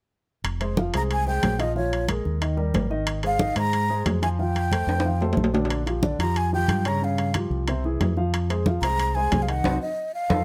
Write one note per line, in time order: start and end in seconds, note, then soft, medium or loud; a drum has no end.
0.44 0.90 F1 medium
0.44 high conga soft
0.44 high timbale medium
0.61 0.74 G#3 medium
0.61 0.74 G#4 medium
0.61 0.74 C5 medium
0.61 high conga soft
0.61 high timbale medium
0.77 0.91 F3 medium
0.77 0.91 F4 medium
0.77 0.92 F5 medium
0.77 high conga medium
0.94 1.40 C2 medium
0.94 1.21 G#3 medium
0.94 1.21 G#4 medium
0.94 1.21 C5 medium
0.94 1.03 A#5 medium
0.94 high timbale medium
1.11 1.26 G#5 medium
1.11 high conga soft
1.11 high timbale medium
1.27 1.53 G#3 medium
1.27 1.54 G#4 medium
1.27 1.54 C5 medium
1.27 1.61 G5 medium
1.27 high conga soft
1.43 2.19 A#1 medium
1.43 high conga medium
1.43 high timbale medium
1.43 low timbale medium
1.59 1.73 F3 medium
1.59 1.73 F4 medium
1.59 1.76 D#5 medium
1.59 1.73 F5 medium
1.59 high conga soft
1.59 high timbale medium
1.75 2.02 F3 medium
1.75 2.03 F4 medium
1.75 2.07 C#5 medium
1.75 2.03 F5 medium
1.75 high conga soft
1.92 high conga soft
1.92 high timbale medium
2.08 2.35 G#3 medium
2.08 2.35 G#4 medium
2.08 2.36 A#4 medium
2.08 high conga medium
2.08 high timbale medium
2.25 2.71 D#2 medium
2.25 high conga soft
2.41 2.55 D#3 medium
2.41 2.55 D#4 medium
2.41 2.55 D#5 medium
2.41 high conga soft
2.41 high timbale medium
2.57 2.84 G3 medium
2.57 2.84 G4 medium
2.57 2.85 A#4 medium
2.57 high conga soft
2.74 3.51 G#1 medium
2.74 high conga medium
2.74 high timbale medium
2.74 low timbale medium
2.90 3.17 D#3 medium
2.90 3.18 D#4 medium
2.90 3.18 D#5 medium
2.90 high conga soft
3.07 high conga soft
3.07 high timbale medium
3.23 3.37 G#3 medium
3.23 3.37 G#4 medium
3.23 3.37 C5 medium
3.23 3.56 F5 medium
3.23 high conga soft
3.23 high timbale medium
3.39 3.53 D#3 medium
3.39 3.54 D#4 medium
3.39 3.54 D#5 medium
3.39 high conga medium
3.56 4.02 G#2 medium
3.56 3.83 G#3 medium
3.56 3.84 G#4 medium
3.56 3.84 C5 medium
3.56 4.03 A#5 loud
3.56 high timbale medium
3.73 high conga soft
3.73 high timbale medium
3.89 4.16 G#3 medium
3.89 4.16 G#4 medium
3.89 4.17 C5 medium
3.89 high conga soft
4.06 4.82 F2 medium
4.06 high conga medium
4.06 high timbale medium
4.06 low timbale medium
4.22 4.36 F3 medium
4.22 4.36 F4 medium
4.22 4.36 F5 medium
4.22 4.29 G#5 medium
4.22 high conga soft
4.22 high timbale medium
4.39 4.66 F3 medium
4.39 4.66 F4 medium
4.39 4.66 F5 medium
4.39 5.34 G5 medium
4.39 high conga soft
4.55 high conga soft
4.55 high timbale medium
4.72 4.99 A3 medium
4.72 4.99 A4 medium
4.72 4.99 C5 medium
4.72 high conga medium
4.72 high timbale medium
4.87 5.33 F2 medium
4.87 high conga soft
4.87 high timbale medium
5.00 high timbale medium
5.05 5.18 F3 medium
5.05 5.19 F4 medium
5.05 5.19 F5 medium
5.05 high conga soft
5.21 5.48 A3 medium
5.21 5.48 A4 medium
5.21 5.48 C5 medium
5.21 high conga soft
5.21 low timbale medium
5.33 6.13 A#1 medium
5.33 low timbale medium
5.37 high conga medium
5.44 low timbale medium
5.53 5.80 D3 medium
5.53 5.81 D4 medium
5.53 5.81 D5 medium
5.53 high conga soft
5.53 low timbale loud
5.65 low timbale medium
5.70 high conga soft
5.70 high timbale medium
5.86 6.00 F3 medium
5.86 6.00 F4 medium
5.86 6.00 G4 medium
5.86 high conga soft
5.86 high timbale medium
6.02 6.16 D3 medium
6.02 6.16 D4 medium
6.02 6.16 D5 medium
6.02 high conga medium
6.19 6.65 F2 medium
6.19 6.46 F3 medium
6.19 6.47 F4 medium
6.19 6.47 G4 medium
6.19 6.39 A#5 medium
6.19 high timbale medium
6.36 6.53 G#5 medium
6.36 high conga soft
6.36 high timbale medium
6.52 6.79 F3 medium
6.52 6.80 F4 medium
6.52 6.80 G4 medium
6.52 6.89 G5 medium
6.52 high conga soft
6.68 7.45 G2 medium
6.68 high conga medium
6.68 high timbale medium
6.85 6.99 C#3 medium
6.85 6.99 C#4 medium
6.85 6.99 C#5 medium
6.85 7.06 A#5 medium
6.85 high conga soft
6.85 high timbale medium
7.02 7.29 C#3 medium
7.02 7.29 C#4 medium
7.02 7.36 F5 medium
7.02 high conga soft
7.18 high conga soft
7.18 high timbale medium
7.34 7.62 F3 medium
7.34 7.62 F4 medium
7.34 7.62 G4 medium
7.34 high conga medium
7.34 high timbale medium
7.50 7.96 C2 medium
7.50 high conga soft
7.68 7.81 C3 medium
7.68 7.81 C4 medium
7.68 7.82 C5 medium
7.68 high conga soft
7.68 high timbale medium
7.84 8.11 E3 medium
7.84 8.11 E4 medium
7.84 8.12 G#4 medium
7.84 high conga soft
8.00 8.77 F2 medium
8.00 high conga medium
8.00 high timbale medium
8.00 low timbale medium
8.17 8.44 F3 medium
8.17 8.44 F4 medium
8.17 8.44 F5 medium
8.17 high conga soft
8.33 high conga soft
8.33 high timbale medium
8.50 8.63 G#3 medium
8.50 8.63 G#4 medium
8.50 8.63 C5 medium
8.50 high conga soft
8.50 high timbale medium
8.66 8.80 F3 medium
8.66 8.80 F4 medium
8.66 8.80 F5 medium
8.66 high conga medium
8.82 9.28 C2 medium
8.82 9.10 G#3 medium
8.82 9.10 G#4 medium
8.82 9.10 C5 medium
8.82 9.16 A#5 medium
8.82 high timbale medium
8.99 high conga soft
8.99 high timbale medium
9.15 9.43 G#3 medium
9.15 9.43 G#4 medium
9.15 9.43 C5 medium
9.15 9.44 G#5 medium
9.15 high conga soft
9.32 9.62 C2 medium
9.32 high conga medium
9.32 high timbale medium
9.32 low timbale medium
9.42 9.51 F5 medium
9.48 9.61 D#3 medium
9.48 9.62 D#4 medium
9.48 9.62 D#5 medium
9.48 9.81 F#5 medium
9.48 high conga soft
9.48 high timbale medium
9.64 9.77 C2 medium
9.64 9.75 C4 medium
9.64 9.75 D#4 medium
9.64 9.75 F#4 medium
9.64 high conga medium
9.64 high timbale medium
9.82 10.12 D#5 medium
10.14 10.44 F5 medium
10.30 10.42 F2 medium
10.30 10.40 D#4 medium
10.30 10.40 F4 medium
10.30 10.40 A4 medium
10.30 high conga medium
10.30 high timbale medium